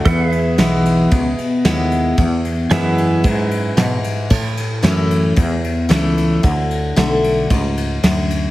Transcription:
0.05 E2 A4 B4 F#5, kick, ride
0.25 G#4
0.32 E5, ride
0.58 B1 E3 G#3 B3 E4, snare, ride
0.85 ride
1.11 C#2 B2, kick, ride
1.38 muted fretless electric bass stroke, ride
1.65 D#2 G#3 B3 E4, snare, ride
1.91 ride
2.18 E2, kick, ride
2.45 ride
2.70 F#2 E3 G#3 B3 E4 G#4 B4 E5, snare, ride
2.98 ride
3.24 F#2 G#2, kick, ride
3.51 ride
3.77 G#2 B2, snare, ride
4.04 muted fretless electric bass stroke, ride
4.30 A2, kick, crash
4.57 ride
4.83 F#2 E3 A3 C#4 E4, snare, ride
5.11 ride
5.37 E2, kick, ride
5.64 ride
5.89 C#2 E3 A3 C#4 E4, snare, ride
6.18 ride
6.43 D2 D3, kick, ride
6.71 ride
6.96 B1 D3 A3 D4 F#4, snare, ride
7.24 ride
7.50 C#2 G#2, kick, ride
7.77 ride
8.03 D2 F#2, snare, ride
8.30 ride

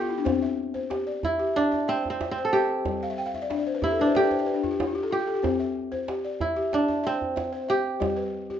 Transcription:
Already playing: B3 D4 E4 G4
0.01 F4
0.10 E4
0.18 D4
0.25 C4 C5, djembe slap, djembe tone, djembe bass
0.42 E5
0.74 C5, djembe tone
0.90 G4, djembe slap
1.07 D5
1.23 E4, djembe tone, djembe bass
1.39 G4
1.56 D4, djembe slap
1.71 E5, djembe tone
1.88 C4 E5, djembe slap
2.05 djembe bass
2.10 C4
2.21 E5, djembe slap, djembe tone
2.31 C4
2.38 C5
2.45 A4
2.53 G4 E5, djembe slap
2.85 G3, djembe slap, djembe tone, djembe bass
3.02 F5, djembe slap
3.10 E5
3.18 G5
3.26 F5
3.34 E5, djembe tone
3.42 D5
3.50 D4 E5, djembe slap
3.59 D5
3.67 C5
3.75 B4
3.82 E4 G4, djembe tone, djembe bass
3.91 A4
3.99 D4 B4
4.06 C5
4.15 G4 A4, djembe slap
4.23 B4
4.31 C5, djembe tone
4.39 D5
4.47 B4, djembe slap
4.54 D4
4.63 F4, djembe bass
4.71 G4
4.80 E4, djembe slap, djembe tone
4.87 F4
4.95 G4
5.03 A4
5.11 F4 G4
5.19 G4
5.27 A4
5.35 G4
5.43 C4 C5, djembe slap, djembe tone, djembe bass
5.59 E5
5.92 C5, djembe tone
6.08 G4, djembe slap
6.24 D5
6.41 E4, djembe tone, djembe bass
6.56 G4
6.73 D4, djembe slap
6.88 E5, djembe tone
7.04 C4 E5, djembe slap
7.22 djembe bass
7.36 E5, djembe slap, djembe tone
7.52 C5
7.68 G4 E5, djembe slap
8.00 G3 G4, djembe slap, djembe tone, djembe bass
8.17 B4
8.50 G4, djembe tone

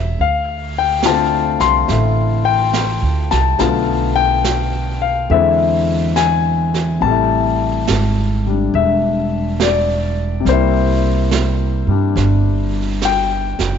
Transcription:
Already playing: E1 C#3 G3 A3 F4 E5
0.19 D2 F5, brush sweep
0.78 G5
1.03 D3 A3 C4 F4 A5, snare, hi-hat pedal
1.60 C2 C6, snare
1.88 A1 A3 E4, brush sweep, snare
2.45 G5
2.73 snare, hi-hat pedal
3.02 D2
3.31 C2 A5, snare
3.59 B1 D3 A3 B3 F4 A5, brush sweep, snare
4.16 G5
4.44 snare, hi-hat pedal
5.02 F5
5.29 E2 D3 G#3 C4 E4 E5, brush sweep
6.16 G#5, snare, hi-hat pedal
6.74 snare
7.00 A1 C3 G3 A5, brush sweep
7.07 A3 E4
7.87 G#1, snare, hi-hat pedal
8.46 G3 D4
8.73 E1 E5, brush sweep
9.60 D5, snare, hi-hat pedal
10.40 C3
10.45 C2 G3 A#3, brush sweep, snare
10.49 E4 C5
11.31 snare, hi-hat pedal
11.87 G2 G3 D4
12.16 G1, brush sweep, snare
13.02 G5, snare, hi-hat pedal
13.59 F#1, snare

